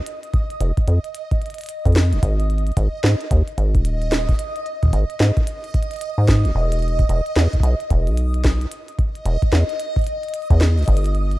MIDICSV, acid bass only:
0, 0, Header, 1, 2, 480
1, 0, Start_track
1, 0, Tempo, 540541
1, 59, Time_signature, 4, 2, 24, 8
1, 10117, End_track
2, 0, Start_track
2, 0, Title_t, "Acid bass"
2, 0, Program_c, 0, 38
2, 538, Note_on_c, 0, 29, 101
2, 642, Note_off_c, 0, 29, 0
2, 778, Note_on_c, 0, 41, 84
2, 882, Note_off_c, 0, 41, 0
2, 1647, Note_on_c, 0, 41, 86
2, 1887, Note_on_c, 0, 27, 85
2, 1900, Note_off_c, 0, 41, 0
2, 1951, Note_off_c, 0, 27, 0
2, 1979, Note_on_c, 0, 32, 94
2, 2414, Note_off_c, 0, 32, 0
2, 2459, Note_on_c, 0, 32, 102
2, 2562, Note_off_c, 0, 32, 0
2, 2698, Note_on_c, 0, 44, 82
2, 2802, Note_off_c, 0, 44, 0
2, 2939, Note_on_c, 0, 39, 85
2, 3042, Note_off_c, 0, 39, 0
2, 3178, Note_on_c, 0, 32, 76
2, 3328, Note_on_c, 0, 27, 80
2, 3341, Note_off_c, 0, 32, 0
2, 3854, Note_off_c, 0, 27, 0
2, 4379, Note_on_c, 0, 32, 99
2, 4482, Note_off_c, 0, 32, 0
2, 4619, Note_on_c, 0, 44, 80
2, 4722, Note_off_c, 0, 44, 0
2, 5487, Note_on_c, 0, 44, 82
2, 5727, Note_on_c, 0, 29, 86
2, 5740, Note_off_c, 0, 44, 0
2, 5791, Note_off_c, 0, 29, 0
2, 5819, Note_on_c, 0, 28, 96
2, 6254, Note_off_c, 0, 28, 0
2, 6299, Note_on_c, 0, 28, 103
2, 6402, Note_off_c, 0, 28, 0
2, 6538, Note_on_c, 0, 40, 80
2, 6642, Note_off_c, 0, 40, 0
2, 6778, Note_on_c, 0, 35, 87
2, 6882, Note_off_c, 0, 35, 0
2, 7020, Note_on_c, 0, 28, 75
2, 7166, Note_on_c, 0, 35, 78
2, 7180, Note_off_c, 0, 28, 0
2, 7694, Note_off_c, 0, 35, 0
2, 8219, Note_on_c, 0, 28, 97
2, 8322, Note_off_c, 0, 28, 0
2, 8458, Note_on_c, 0, 40, 86
2, 8562, Note_off_c, 0, 40, 0
2, 9327, Note_on_c, 0, 40, 89
2, 9567, Note_on_c, 0, 37, 83
2, 9580, Note_off_c, 0, 40, 0
2, 9631, Note_off_c, 0, 37, 0
2, 9659, Note_on_c, 0, 31, 97
2, 10094, Note_off_c, 0, 31, 0
2, 10117, End_track
0, 0, End_of_file